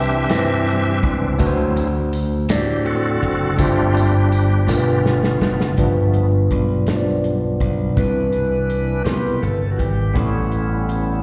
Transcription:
Already playing: C2 C3 E3 G3 C4 D4 E4 G4 B4 E5
0.29 G2 G3 C4 E4 B4, snare, ride, tambourine
0.37 C5
0.67 snare, ride
1.03 C#2, kick, ride
1.38 D2 D3 F#3 A3 C4 D4 E4 F#4 B4, kick, ride, tambourine
1.47 C5
1.76 ride, tambourine
2.13 ride, tambourine
2.49 A2 A3 D4 E4 G4 D5, snare, ride, tambourine
2.56 F#4
2.84 C4 F#4 A4, ride
3.22 F#1, ride
3.58 G1 G2 G3 A3 C4 D4 F4 G4 C5, kick, ride, tambourine
3.95 ride, tambourine
4.32 ride, tambourine
4.66 G1 B2 G3 A3 B3 D4 F4 A#4, snare, tambourine
4.76 B4
5.06 snare
5.24 snare
5.41 F#1, snare
5.61 snare
5.77 G1 G2 F3 G3 A3 B3 D4 F4 B4, kick, closed hi-hat
6.14 closed hi-hat
6.51 B1, kick, closed hi-hat
6.87 G3 D4 F4 C5, snare, closed hi-hat
6.96 D5
7.24 closed hi-hat
7.60 B1, kick, closed hi-hat
7.96 C2 C3 E3 G3 C4 D4 E4 B4, kick, closed hi-hat
8.32 closed hi-hat
8.70 closed hi-hat
9.04 B1 G3 C4 E4 G4 A#4, snare, closed hi-hat
9.14 B4
9.42 G1 A4, closed hi-hat
9.71 F#4
9.78 G#1 G4, kick, closed hi-hat
10.14 A1 A2 G3 A3 B3 C#4 E4 A4, kick, closed hi-hat
10.52 closed hi-hat
10.89 closed hi-hat

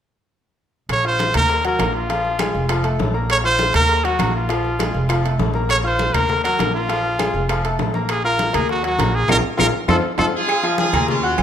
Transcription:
0.89 A#1 C#5, high bongo, high conga, high timbale, claves
1.05 F4 C5 F5 F6, high conga
1.19 high bongo, high conga, high timbale, low timbale
1.34 D#2 A#3 A#4 A#5, high conga, low conga, high timbale, claves
1.50 high bongo, high conga
1.65 F#3 F#4 A#4 F#5, high conga, high timbale
1.79 A#1 A#3 A#4 A#5, high bongo, low bongo, high conga, high timbale, low timbale, claves
1.96 F4
2.09 F3 F4 F5, high bongo, high conga, high timbale
2.25 high bongo, high conga
2.39 G#3 G#4 G#5, high bongo, high conga, high timbale, low timbale, claves
2.54 F1, high bongo, high conga
2.69 F3 F4 F5, high bongo, high conga, high timbale, claves
2.84 A3 A4 A5, high conga, high timbale
2.99 A#1, high bongo, low bongo, high conga, low timbale
3.14 A#3 A#4 A#5, high bongo
3.30 C#5, high bongo, high conga, high timbale, claves
3.44 F4 C5 F5 F6, high conga
3.59 high bongo, high conga, high timbale, low timbale
3.74 D#2 A#3 A#4 A#5, high conga, low conga, high timbale, claves
3.89 high bongo, high conga
4.04 F#3 F#4 F#5, high conga, high timbale
4.19 A#1 A#3 A#4 A#5, high bongo, low bongo, high conga, high timbale, low timbale, claves
4.35 F4
4.49 F3 F4 F5, high bongo, high conga, high timbale
4.64 high bongo, high conga
4.79 G#3 G#4 G#5, high bongo, high conga, high timbale, low timbale, claves
4.94 F1, high bongo, high conga
5.09 F3 F4 F5, high bongo, high conga, high timbale, claves
5.24 A3 A4 A5, high conga, high timbale
5.39 A#1, high bongo, low bongo, high conga, low timbale
5.54 A#3 A#4 A#5, high bongo, high conga
5.69 C#5, high bongo, high conga, high timbale, claves
5.84 F4 C5 F5 F6, high conga
5.99 high bongo, high conga, high timbale, low timbale
6.14 D#2 A#3 A#4 A#5, high conga, low conga, high timbale, claves
6.29 high bongo, high conga, low conga
6.43 F#3 F#4 A#4 F#5, high conga, high timbale
6.59 A#1 A#3 A#4 A#5, high bongo, low bongo, high conga, high timbale, low timbale, claves
6.75 F4
6.89 F3 F4 F5, high bongo, high conga, high timbale
7.05 high bongo, high conga
7.19 G#3 G#4 G#5, high bongo, high conga, high timbale, low timbale, claves
7.34 F1, high bongo, high conga
7.49 F3 F4 F5, high bongo, high conga, high timbale, claves
7.64 A3 A4 A5, high conga, high timbale
7.79 A#1, high bongo, low bongo, high conga, low timbale
7.94 A#3 A#4 A#5, high bongo, high conga
8.09 G#4, high bongo, high conga, high timbale, claves
8.24 F4 A#4 F5 F6, high conga
8.39 high bongo, high conga, high timbale, low timbale
8.53 D#2 A#3 G#4 A#4 A#5, high conga, low conga, high timbale, claves
8.69 F#4, high bongo, high conga
8.83 F#3 F#4 F#5, high conga, high timbale
8.98 A#1 A#3 A#4 A#5, high bongo, low bongo, high conga, high timbale, low timbale, claves
9.15 G#4
9.28 A#1 F4 G#4 A#4, low bongo, high conga, high timbale, claves
9.57 A#1 F4 G#4 A#4, low bongo, high conga, high timbale, claves
9.88 F2 F4 A4 C5, low bongo, high conga, high timbale, claves
10.18 F2 F4 A4 C5, low bongo, high conga, high timbale, claves
10.35 F4 G#4
10.48 cowbell, high conga, low agogo, claves
10.63 F3 F4 F5, cowbell, high conga
10.78 F4 G#4, cowbell, high conga, low timbale, low agogo
10.93 D#2 A#3 A#4 A#5, cowbell, high conga, low conga, low agogo, claves
11.08 C#4 F4, cowbell, high conga, low conga
11.23 F#4 F#5 F#6, high conga
11.38 A#1, cowbell, high conga, low timbale, low agogo, claves

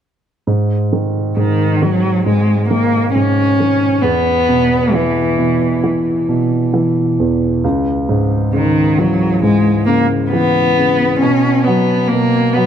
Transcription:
0.47 G#2
0.93 D#3
1.37 G#2 D#3
1.82 D#3 F#3
2.26 G#2 G#3
2.69 D#3 A#3
3.14 G#2 C#4
3.60 D#3
4.02 E2 B3
4.49 B2
4.93 E3
5.38 B2
5.84 E3
6.29 B2
6.74 E3
7.20 E2
7.64 C#2
8.09 G#2
8.53 C#3 D#3
8.98 E3 F#3
9.43 G#2 G#3
9.86 C#3 A#3
10.31 E3 B3
10.78 C#3
11.20 B2 C#4
11.64 F#3 B3
12.08 A#3
12.13 B2
12.53 F#3 B3

